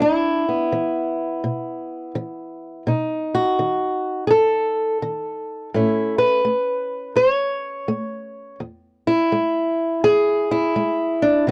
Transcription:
0.00 0.68 E2 medium
0.00 0.47 D4 medium
0.00 2.88 E4 medium
0.49 2.88 B3 soft
0.72 1.39 E3 medium
1.44 2.11 B2 medium
2.15 2.82 E3 medium
2.87 3.54 B2 medium
2.87 5.71 D#4 soft
3.35 4.26 F#4 medium
3.59 4.26 D#3 medium
4.27 4.97 F#2 medium
4.27 4.30 G#4 medium
4.27 5.74 A4 medium
5.02 5.69 D#3 medium
5.74 6.41 A2 medium
5.74 6.43 A3 soft
5.74 8.58 C#4 soft
5.74 6.18 E4 soft
6.18 7.16 B4 medium
6.45 7.12 A3 medium
7.16 7.83 E2 medium
7.16 8.60 C#5 loud
7.88 8.55 A3 medium
8.60 9.27 E2 medium
9.07 10.50 E4 medium
9.32 9.99 G#3 medium
10.04 10.70 E2 medium
10.04 11.22 G#4 loud
10.51 11.48 E4 medium
10.76 11.42 G#3 medium
11.22 11.47 D4 medium
11.47 11.51 B2 medium
11.47 11.51 F#3 soft

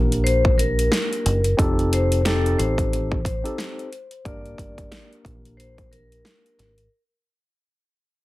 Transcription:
0.00 0.88 A#1 medium
0.00 1.39 A#3 medium
0.00 1.39 D4 medium
0.00 1.40 G4 medium
0.00 1.40 A#4 loud
0.12 closed hi-hat medium
0.24 0.55 C5 medium
0.24 closed hi-hat medium
0.45 kick medium
0.58 1.54 A#4 medium
0.58 closed hi-hat medium
0.79 closed hi-hat medium
0.92 snare loud
0.92 closed hi-hat medium
1.13 closed hi-hat soft
1.26 1.53 F#1 medium
1.26 closed hi-hat medium
1.44 closed hi-hat medium
1.57 2.55 F1 loud
1.57 2.20 C4 medium
1.57 2.20 D#4 medium
1.57 2.21 G4 medium
1.57 2.21 A4 loud
1.57 kick loud
1.57 closed hi-hat medium
1.79 closed hi-hat soft
1.93 2.23 C5 medium
1.93 closed hi-hat medium
2.12 closed hi-hat medium
2.25 3.19 C4 medium
2.25 3.19 D#4 medium
2.25 3.19 G4 medium
2.25 2.56 A4 medium
2.25 3.19 A4 loud
2.25 snare loud
2.25 closed hi-hat medium
2.46 closed hi-hat soft
2.58 3.41 A1 medium
2.58 3.21 C5 medium
2.58 closed hi-hat medium
2.78 kick medium
2.78 closed hi-hat medium
2.93 closed hi-hat medium
3.12 kick medium
3.25 4.21 C5 medium
3.25 kick loud
3.25 closed hi-hat medium
3.44 3.88 C4 medium
3.44 3.88 D#4 medium
3.44 3.89 G4 medium
3.44 3.89 A4 loud
3.44 closed hi-hat medium
3.58 snare loud
3.58 closed hi-hat medium
3.79 closed hi-hat soft
3.93 closed hi-hat medium
4.11 closed hi-hat medium
4.25 4.53 G1 loud
4.25 6.72 A#3 medium
4.25 6.73 D4 medium
4.25 6.73 G4 medium
4.25 6.73 A#4 loud
4.25 5.07 D5 loud
4.25 kick loud
4.25 closed hi-hat medium
4.46 closed hi-hat soft
4.58 4.86 G1 medium
4.58 kick medium
4.58 closed hi-hat medium
4.78 kick loud
4.78 closed hi-hat medium
4.92 snare loud
4.92 closed hi-hat medium
5.13 closed hi-hat soft
5.25 6.21 A#1 loud
5.25 kick medium
5.25 closed hi-hat medium
5.45 closed hi-hat medium
5.57 5.88 C5 medium
5.57 closed hi-hat medium
5.78 kick medium
5.78 closed hi-hat soft
5.92 6.88 A#4 medium
5.92 closed hi-hat medium
6.12 closed hi-hat medium
6.25 snare loud
6.25 closed hi-hat medium
6.46 closed hi-hat soft
6.59 6.86 G#1 medium
6.59 snare soft
6.59 closed hi-hat medium
6.78 closed hi-hat medium

